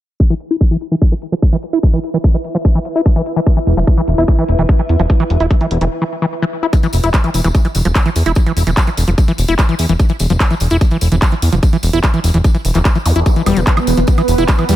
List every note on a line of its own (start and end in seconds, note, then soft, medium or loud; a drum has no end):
0.20 5.91 E4 medium
0.20 kick loud
0.20 closed hi-hat medium
0.30 0.34 E3 loud
0.30 closed hi-hat soft
0.40 closed hi-hat loud
0.51 0.56 E4 medium
0.51 closed hi-hat medium
0.61 kick loud
0.61 closed hi-hat medium
0.71 0.77 E3 medium
0.71 closed hi-hat soft
0.81 closed hi-hat medium
0.91 0.95 E3 medium
0.91 closed hi-hat medium
0.96 5.91 B4 medium
1.02 kick loud
1.02 closed hi-hat medium
1.12 1.14 E3 medium
1.22 closed hi-hat medium
1.32 1.34 F3 medium
1.32 5.91 E5 medium
1.32 closed hi-hat medium
1.42 kick loud
1.42 closed hi-hat medium
1.53 1.56 E3 loud
1.53 closed hi-hat soft
1.63 closed hi-hat medium
1.73 1.79 E4 medium
1.73 closed hi-hat medium
1.83 kick loud
1.83 closed hi-hat medium
1.93 1.99 E3 medium
1.93 closed hi-hat soft
2.04 closed hi-hat loud
2.14 2.18 E3 medium
2.14 closed hi-hat medium
2.24 kick loud
2.24 closed hi-hat soft
2.34 2.37 E3 medium
2.34 closed hi-hat soft
2.44 closed hi-hat medium
2.55 2.57 F3 medium
2.55 closed hi-hat medium
2.65 kick loud
2.65 closed hi-hat medium
2.75 2.79 E3 loud
2.75 closed hi-hat soft
2.85 closed hi-hat loud
2.95 3.01 E4 medium
2.95 closed hi-hat medium
3.06 kick loud
3.06 closed hi-hat soft
3.16 3.22 E3 medium
3.16 closed hi-hat soft
3.26 closed hi-hat loud
3.36 3.40 E3 medium
3.36 closed hi-hat medium
3.46 kick loud
3.46 closed hi-hat medium
3.57 3.59 E3 medium
3.57 closed hi-hat soft
3.67 3.74 E1 loud
3.67 closed hi-hat medium
3.77 3.84 E1 medium
3.77 3.79 F3 medium
3.77 closed hi-hat soft
3.87 kick loud
3.87 closed hi-hat medium
3.97 4.01 E3 loud
3.97 closed hi-hat soft
4.08 4.15 E1 medium
4.08 closed hi-hat medium
4.18 4.25 E1 medium
4.18 4.24 E4 medium
4.18 closed hi-hat soft
4.28 kick loud
4.28 closed hi-hat soft
4.38 4.44 E3 medium
4.38 closed hi-hat soft
4.49 4.55 E1 medium
4.49 closed hi-hat medium
4.59 4.66 E1 medium
4.59 4.63 E3 medium
4.59 closed hi-hat soft
4.69 kick loud
4.69 closed hi-hat soft
4.79 4.81 E3 medium
4.79 closed hi-hat soft
4.89 4.96 E2 medium
4.89 closed hi-hat medium
5.00 5.06 E1 medium
5.00 5.02 F3 medium
5.00 closed hi-hat medium
5.10 kick loud
5.10 closed hi-hat medium
5.20 5.24 E3 loud
5.20 closed hi-hat soft
5.30 5.37 E1 loud
5.30 closed hi-hat medium
5.40 5.47 E1 medium
5.40 5.46 E4 medium
5.40 closed hi-hat medium
5.51 kick loud
5.51 closed hi-hat soft
5.61 5.67 E3 medium
5.61 closed hi-hat soft
5.71 5.78 E1 loud
5.71 closed hi-hat medium
5.81 5.88 E1 medium
5.81 5.85 E3 medium
5.81 closed hi-hat soft
6.02 6.04 E3 medium
6.22 6.26 E3 medium
6.42 6.45 E3 loud
6.63 6.67 E4 medium
6.73 kick loud
6.73 closed hi-hat medium
6.73 tambourine soft
6.83 6.87 E3 loud
6.83 closed hi-hat soft
6.83 tambourine soft
6.93 7.00 E1 loud
6.93 open hi-hat loud
6.93 tambourine loud
7.03 7.11 E1 medium
7.03 7.09 E4 medium
7.03 closed hi-hat medium
7.03 tambourine soft
7.14 kick loud
7.14 clap loud
7.14 closed hi-hat medium
7.14 tambourine medium
7.24 7.30 E3 medium
7.24 closed hi-hat soft
7.24 tambourine soft
7.34 7.41 E1 loud
7.34 open hi-hat loud
7.34 tambourine medium
7.44 7.51 E1 medium
7.44 7.48 E3 medium
7.44 closed hi-hat medium
7.44 tambourine soft
7.55 kick loud
7.55 closed hi-hat medium
7.55 tambourine soft
7.65 7.67 E3 medium
7.65 closed hi-hat soft
7.65 tambourine soft
7.75 7.82 E1 medium
7.75 open hi-hat loud
7.75 tambourine medium
7.85 7.92 E1 medium
7.85 7.88 F3 medium
7.85 closed hi-hat medium
7.85 tambourine soft
7.95 kick loud
7.95 clap loud
7.95 closed hi-hat medium
7.95 tambourine medium
8.06 8.09 E3 loud
8.06 closed hi-hat soft
8.06 tambourine soft
8.16 8.23 E2 medium
8.16 open hi-hat loud
8.16 tambourine medium
8.26 8.33 E1 medium
8.26 8.32 E4 medium
8.26 closed hi-hat medium
8.26 tambourine soft
8.35 kick loud
8.35 closed hi-hat medium
8.35 tambourine medium
8.46 8.52 E3 medium
8.46 closed hi-hat soft
8.46 tambourine soft
8.57 8.64 E1 loud
8.57 open hi-hat loud
8.57 tambourine medium
8.67 8.74 E1 medium
8.67 8.71 E3 medium
8.67 closed hi-hat medium
8.67 tambourine soft
8.77 kick loud
8.77 clap loud
8.77 closed hi-hat medium
8.77 tambourine medium
8.87 8.90 E3 medium
8.87 closed hi-hat soft
8.87 tambourine soft
8.97 9.04 E1 loud
8.97 open hi-hat loud
8.97 tambourine loud
9.08 9.15 E1 medium
9.08 9.10 F3 medium
9.08 closed hi-hat medium
9.08 tambourine soft
9.18 kick loud
9.18 closed hi-hat medium
9.18 tambourine medium
9.28 9.32 E3 loud
9.28 closed hi-hat soft
9.28 tambourine soft
9.38 9.45 E1 medium
9.38 open hi-hat loud
9.38 tambourine medium
9.48 9.55 E1 medium
9.48 9.54 E4 medium
9.48 closed hi-hat medium
9.48 tambourine soft
9.59 kick loud
9.59 clap loud
9.59 closed hi-hat medium
9.59 tambourine medium
9.69 9.75 E3 medium
9.69 closed hi-hat soft
9.69 tambourine soft
9.79 9.86 E2 medium
9.79 open hi-hat loud
9.79 tambourine medium
9.89 9.96 E1 medium
9.89 9.93 E3 medium
9.89 closed hi-hat medium
9.89 tambourine soft
9.99 kick loud
9.99 closed hi-hat medium
9.99 tambourine soft
10.09 10.12 E3 medium
10.09 closed hi-hat soft
10.09 tambourine soft
10.19 10.27 E1 loud
10.19 open hi-hat loud
10.19 tambourine medium
10.30 10.37 E1 medium
10.30 10.32 F3 medium
10.30 closed hi-hat medium
10.30 tambourine soft
10.40 kick loud
10.40 clap loud
10.40 closed hi-hat medium
10.40 tambourine medium
10.51 10.54 E3 loud
10.51 closed hi-hat soft
10.51 tambourine soft
10.60 10.68 E1 medium
10.60 open hi-hat loud
10.60 tambourine medium
10.70 10.78 E1 medium
10.70 10.77 E4 medium
10.70 closed hi-hat soft
10.70 tambourine soft
10.81 kick loud
10.81 closed hi-hat medium
10.81 tambourine medium
10.91 10.97 E3 medium
10.91 closed hi-hat soft
10.91 tambourine soft
11.01 11.08 E1 medium
11.01 open hi-hat loud
11.01 tambourine loud
11.12 11.19 E1 medium
11.12 11.16 E3 medium
11.12 closed hi-hat medium
11.12 tambourine soft
11.22 kick loud
11.22 clap loud
11.22 closed hi-hat medium
11.22 tambourine medium
11.31 11.34 E3 medium
11.31 closed hi-hat soft
11.31 tambourine soft
11.42 11.49 E2 medium
11.42 open hi-hat loud
11.42 tambourine medium
11.52 11.60 E1 medium
11.52 11.55 F3 medium
11.52 closed hi-hat medium
11.52 tambourine soft
11.63 kick loud
11.63 closed hi-hat soft
11.63 tambourine medium
11.73 11.77 E3 loud
11.73 closed hi-hat soft
11.73 tambourine soft
11.83 11.90 E1 loud
11.83 open hi-hat loud
11.83 tambourine medium
11.93 12.00 E1 medium
11.93 11.99 E4 medium
11.93 closed hi-hat soft
11.93 tambourine soft
12.03 kick loud
12.03 clap loud
12.03 closed hi-hat soft
12.03 tambourine medium
12.14 12.20 E3 medium
12.14 closed hi-hat soft
12.14 tambourine soft
12.24 12.31 E1 loud
12.24 open hi-hat loud
12.24 tambourine medium
12.34 12.41 E1 medium
12.34 12.38 E3 medium
12.34 closed hi-hat soft
12.34 tambourine soft
12.44 kick loud
12.44 closed hi-hat medium
12.44 tambourine soft
12.54 12.57 E3 medium
12.54 closed hi-hat soft
12.54 tambourine soft
12.65 12.72 E1 medium
12.65 open hi-hat loud
12.65 tambourine medium
12.74 12.82 E1 medium
12.74 12.79 E3 medium
12.74 clap soft
12.74 closed hi-hat soft
12.74 tambourine soft
12.85 kick loud
12.85 clap loud
12.85 closed hi-hat soft
12.85 tambourine medium
12.95 12.98 E3 loud
12.95 closed hi-hat soft
12.95 tambourine soft
13.06 13.13 E2 medium
13.06 open hi-hat loud
13.06 tambourine medium
13.06 zap medium
13.16 13.23 E1 medium
13.16 13.20 E4 medium
13.16 closed hi-hat soft
13.16 tambourine soft
13.26 14.76 B3 medium
13.26 14.76 B4 medium
13.26 kick loud
13.26 closed hi-hat soft
13.26 tambourine soft
13.36 13.42 E3 medium
13.36 closed hi-hat soft
13.36 tambourine soft
13.46 13.53 E1 loud
13.46 13.58 G3 medium
13.46 open hi-hat loud
13.46 tambourine medium
13.46 high woodblock soft
13.56 13.64 E1 medium
13.56 13.61 E3 medium
13.56 closed hi-hat medium
13.56 tambourine soft
13.67 kick loud
13.67 clap loud
13.67 closed hi-hat soft
13.67 tambourine medium
13.77 13.79 E3 medium
13.77 closed hi-hat soft
13.77 tambourine soft
13.77 high woodblock medium
13.87 13.94 E1 loud
13.87 open hi-hat loud
13.87 tambourine medium
13.97 14.04 E1 medium
13.97 14.00 F3 medium
13.97 closed hi-hat soft
13.97 tambourine soft
14.07 kick loud
14.07 closed hi-hat soft
14.07 tambourine medium
14.18 14.22 E3 loud
14.18 closed hi-hat soft
14.18 tambourine soft
14.18 high woodblock soft
14.28 14.35 E1 medium
14.28 open hi-hat loud
14.28 tambourine medium
14.38 14.45 E1 medium
14.38 14.44 E4 medium
14.38 closed hi-hat medium
14.38 tambourine soft
14.48 kick loud
14.48 clap loud
14.48 closed hi-hat medium
14.48 tambourine medium
14.58 14.64 E3 medium
14.58 closed hi-hat soft
14.58 tambourine soft
14.58 high woodblock soft
14.69 14.76 E2 medium
14.69 14.76 G3 medium
14.69 open hi-hat loud
14.69 tambourine medium